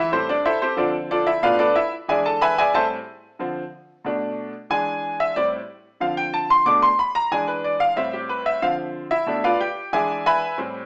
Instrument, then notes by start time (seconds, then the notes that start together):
grand piano
Already playing: E4 E5
0.12 A2 G3 C4 G4 A4 C5
0.29 D4 D5
0.46 E4 A4 C5 E5
0.62 C4 G4 A4 C5
0.76 D3 F3 C4 D4 F4 A4 D5
1.11 D4 F4 A4 D5
1.27 E4 E5
1.42 B2 A3 D4 F4 B4 D5 F5
1.59 D4 A4 B4 D5
1.76 E4 E5
2.08 E3 G#3 D4 G#4 D5 E5 G#5
2.26 A4 A5
2.41 B4 E5 G#5 B5
2.58 G#4 D5 E5 G#5
2.74 A2 G3 C4 A4 C5 E5 A5
3.39 D3 F3 C4
4.04 B2 A3 D4
4.70 E3 G#3 D4 G#5
5.20 E5
5.36 A2 G3 C4 D5
6.00 D3 F3 C4 F5
6.17 G5
6.34 A5
6.50 C6
6.66 B2 A3 D4 D6
6.82 C6
6.99 B5
7.15 A#5
7.31 E3 G#3 D4 G#5
7.48 B4
7.64 D5
7.80 F5
7.96 A2 G3 C4 E5
8.13 G4
8.29 B4
8.46 E5
8.62 D3 F3 C4 F5
9.11 E4 E5
9.26 B2 A3 D4
9.44 F4 B4 D5 F5
9.61 G4 G5
9.93 E3 G#3 D4 G#4 D5 E5 G#5
10.26 B4 E5 G#5 B5
10.58 A2 G3 C4